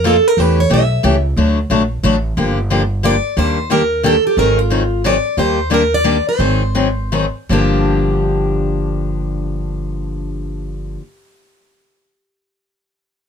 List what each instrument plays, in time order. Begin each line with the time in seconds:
Already playing: upright bass F2
0.04 steel-string acoustic guitar F3 A#3 D#4 F4 A4 A#4
0.28 steel-string acoustic guitar A#4
0.37 upright bass E2, steel-string acoustic guitar E3 A3 C#4 G4 B4
0.60 steel-string acoustic guitar C#5
0.70 upright bass B1, steel-string acoustic guitar E3 A3 C#4 G4 E5
1.03 upright bass C#2, steel-string acoustic guitar E3 A3 C#4 G4
1.36 upright bass D2, steel-string acoustic guitar D3 F#3 A3 D4 F#4
1.70 upright bass A#1, steel-string acoustic guitar D3 F#3 A3 D4 F#4
2.03 upright bass A1, steel-string acoustic guitar D3 F#3 A3 D4 F#4
2.37 upright bass G1, steel-string acoustic guitar D3 F3 A#3 D4 G4
2.70 steel-string acoustic guitar D3 F3 A#3 D4 G4
3.03 steel-string acoustic guitar D3 F3 A#3 D4 G4 D5
3.37 upright bass D#2, steel-string acoustic guitar D#3 G3 A#3 D4 G4 C5
3.70 steel-string acoustic guitar D#3 G3 A#3 D4 G4 A#4
4.03 steel-string acoustic guitar D#3 G3 A#3 D4 G4 A4
4.27 steel-string acoustic guitar G4
4.37 upright bass G#1, steel-string acoustic guitar D#3 F#3 C4 D#4 G#4 A#4
4.59 steel-string acoustic guitar F4
4.70 steel-string acoustic guitar D#3 F#3 C4 D#4 G#4
5.04 steel-string acoustic guitar D#3 F#3 C4 D#4 G#4 D5
5.37 upright bass D#2, steel-string acoustic guitar D#3 G3 A#3 D4 G4 C5
5.70 steel-string acoustic guitar D#3 G3 A#3 D4 G4 A#4
5.94 steel-string acoustic guitar D5
6.04 steel-string acoustic guitar D#3 G3 A#3 D4 G4
6.29 steel-string acoustic guitar C5
6.39 upright bass G#1, steel-string acoustic guitar D#3 F#3 C4 D#4 G#4
6.75 steel-string acoustic guitar D#3 F#3 C4 D#4 G#4
7.12 steel-string acoustic guitar D#3 F#3 C4 D#4 G#4
7.49 upright bass G1, steel-string acoustic guitar G2 D3 F3 A#3 D4 G4